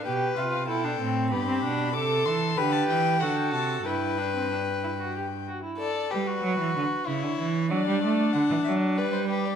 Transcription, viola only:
X:1
M:3/4
L:1/16
Q:1/4=94
K:Gmix
V:1 name="Viola"
G2 F2 E D C2 B, C D2 | [K:G] A4 G4 F4 | E2 D C D2 E F G2 F E | z12 |
z12 |]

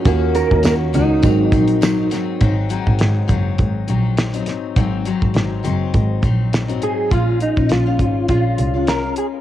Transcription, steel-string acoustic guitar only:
X:1
M:4/4
L:1/16
Q:"Swing 16ths" 1/4=102
K:Abmix
V:1 name="Steel-string acoustic guitar"
[E,B,DG]4 [E,B,DG]2 [E,B,DG]2 [A,,G,CE]2 [A,,G,CE]2 [A,,G,CE]2 [A,,G,CE]2 | [A,,G,CE]2 [A,,G,CE]4 [A,,G,CE]4 [A,,G,CE]3 [A,,G,CE]3 | [A,,G,CE]2 [A,,G,CE]4 [A,,G,CE]4 [A,,G,CE]3 [A,,G,CE]3 | [B,,A,DF]3 [A,DF]2 [B,,A,DF]3 [B,,A,DF]3 [A,DF]2 [A,DF]3 |]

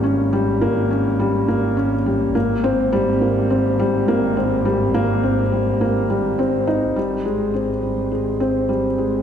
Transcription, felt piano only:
X:1
M:4/4
L:1/8
Q:1/4=104
K:Ab
V:1 name="Felt piano"
D G, B, D G, B, D G, | B, C G, B, C G, B, C | G, B, C G, B, G, C E | G, A, C G, A, C G, A, |]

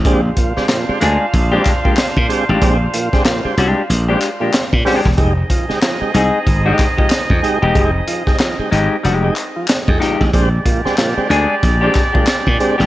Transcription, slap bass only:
X:1
M:4/4
L:1/16
Q:"Swing 16ths" 1/4=93
K:Bbmix
V:1 name="Slap bass" clef=bass
B,,,2 z4 D,, z B,,,2 z3 B,, z =A,,, | B,,,2 z4 C,, z B,,,2 z3 B,, z =E,,, | F,,,2 z4 C,, z A,,,2 z3 F,, z =E,,, | F,,,2 z4 A,,, z F,,,2 z3 F,, z =A,,, |
B,,,2 z4 D,, z B,,,2 z3 B,, z =A,,, |]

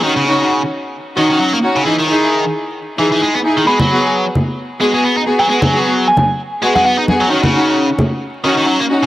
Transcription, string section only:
X:1
M:4/4
L:1/8
Q:"Swing 16ths" 1/4=132
K:G#m
V:1 name="String section"
[CDF] [CDF] z3 [CDF] z [CDF] | [DEG] [DEG] z3 [DEG] z [DEG] | [B,FG] [B,FG] z3 [B,FG] z [B,FG] | [B,FG] [B,FG] z3 [B,FG] z [B,FG] |
[CDF] [CDF] z3 [CDF] z [CDF] |]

